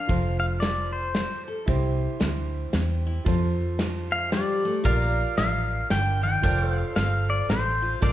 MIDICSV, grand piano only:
0, 0, Header, 1, 2, 480
1, 0, Start_track
1, 0, Tempo, 528634
1, 80, Time_signature, 3, 2, 24, 8
1, 7378, End_track
2, 0, Start_track
2, 0, Title_t, "Grand piano"
2, 0, Program_c, 0, 0
2, 68, Note_on_c, 0, 65, 62
2, 84, Note_on_c, 0, 69, 56
2, 97, Note_on_c, 0, 72, 69
2, 1486, Note_off_c, 0, 65, 0
2, 1494, Note_off_c, 0, 69, 0
2, 1501, Note_off_c, 0, 72, 0
2, 1507, Note_on_c, 0, 64, 71
2, 1518, Note_on_c, 0, 67, 72
2, 1532, Note_on_c, 0, 72, 82
2, 2926, Note_off_c, 0, 64, 0
2, 2931, Note_off_c, 0, 67, 0
2, 2939, Note_off_c, 0, 72, 0
2, 2947, Note_on_c, 0, 65, 73
2, 2958, Note_on_c, 0, 69, 69
2, 2973, Note_on_c, 0, 72, 82
2, 4367, Note_off_c, 0, 65, 0
2, 4372, Note_off_c, 0, 69, 0
2, 4379, Note_off_c, 0, 72, 0
2, 4385, Note_on_c, 0, 65, 60
2, 4399, Note_on_c, 0, 70, 55
2, 4414, Note_on_c, 0, 74, 67
2, 5805, Note_off_c, 0, 65, 0
2, 5812, Note_off_c, 0, 70, 0
2, 5820, Note_off_c, 0, 74, 0
2, 5829, Note_on_c, 0, 65, 65
2, 5845, Note_on_c, 0, 69, 61
2, 5856, Note_on_c, 0, 72, 70
2, 7246, Note_off_c, 0, 65, 0
2, 7254, Note_off_c, 0, 69, 0
2, 7260, Note_off_c, 0, 72, 0
2, 7271, Note_on_c, 0, 65, 63
2, 7285, Note_on_c, 0, 70, 61
2, 7298, Note_on_c, 0, 74, 70
2, 7378, Note_off_c, 0, 65, 0
2, 7378, Note_off_c, 0, 70, 0
2, 7378, Note_off_c, 0, 74, 0
2, 7378, End_track
0, 0, End_of_file